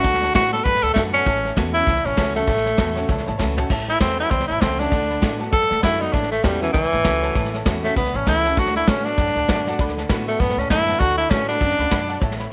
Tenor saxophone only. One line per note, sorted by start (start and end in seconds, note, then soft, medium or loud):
0.00 0.34 F#4 loud
0.35 0.51 F#4 loud
0.52 0.65 A4 loud
0.64 0.84 B4 loud
0.83 0.93 A4 loud
0.93 1.02 A3 loud
1.13 1.53 C#4 loud
1.73 2.07 E4 loud
2.05 2.35 C#4 loud
2.36 3.35 A3 loud
3.89 4.00 E4 loud
4.01 4.18 C4 medium
4.20 4.31 E4 loud
4.30 4.47 C4 medium
4.47 4.62 E4 medium
4.61 4.80 C4 medium
4.79 5.38 D4 loud
5.52 5.82 A4 loud
5.83 6.02 E4 medium
6.01 6.14 D#4 medium
6.12 6.30 D4 medium
6.31 6.45 A3 medium
6.43 6.61 G3 medium
6.62 6.72 E3 medium
6.73 7.62 E3 loud
7.83 7.96 A3 medium
7.97 8.17 B3 medium
8.15 8.27 C#4 medium
8.28 8.60 E4 loud
8.59 8.75 F#4 medium
8.76 8.90 E4 medium
8.88 9.06 C#4 medium
9.05 9.94 D4 loud
10.27 10.41 A3 medium
10.40 10.60 B3 medium
10.58 10.69 C#4 medium
10.70 11.01 E4 loud
10.99 11.17 F#4 loud
11.17 11.31 E4 loud
11.30 11.48 C#4 loud
11.48 12.19 D4 loud